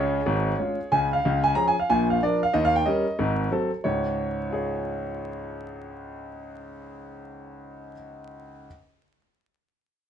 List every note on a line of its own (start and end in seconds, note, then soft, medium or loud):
0.00 0.18 C#2 medium
0.00 0.19 C#3 medium
0.00 1.07 G#4 medium
0.00 0.92 C#5 medium
0.26 0.52 G#1 medium
0.26 0.52 G#2 medium
0.59 0.76 G#3 soft
0.59 0.77 C#4 soft
0.59 0.77 F4 soft
0.92 1.17 C#2 medium
0.92 1.18 C#3 medium
0.92 1.08 G#5 medium
1.13 1.40 F5 medium
1.25 1.52 C#2 medium
1.25 1.52 C#3 medium
1.44 1.54 G#5 medium
1.55 1.73 F3 medium
1.55 1.74 C#4 soft
1.55 1.74 G#4 soft
1.55 1.65 A#5 medium
1.68 1.76 G#5 medium
1.80 1.88 F5 medium
1.90 2.17 A#1 medium
1.90 2.17 A#2 medium
1.90 2.06 G#5 medium
2.10 2.20 F5 medium
2.23 2.41 F3 soft
2.23 2.41 D4 soft
2.23 2.41 A#4 soft
2.23 2.39 D5 medium
2.43 2.53 F5 medium
2.54 2.81 D#2 medium
2.54 2.81 D#3 medium
2.54 2.63 D#5 medium
2.65 2.74 F5 medium
2.76 2.85 G5 medium
2.86 3.04 G3 medium
2.86 3.04 C#4 medium
2.86 3.05 A#4 soft
2.86 3.31 D#5 medium
3.19 3.47 G#1 medium
3.19 3.47 G#2 medium
3.51 3.69 F#3 soft
3.51 3.70 C4 soft
3.51 3.70 A4 medium
3.84 7.92 C#2 medium
3.84 7.92 G#2 medium
3.84 4.53 C#5 medium
4.50 7.92 F4 soft
4.50 7.93 G#4 soft
4.54 7.94 C#5 soft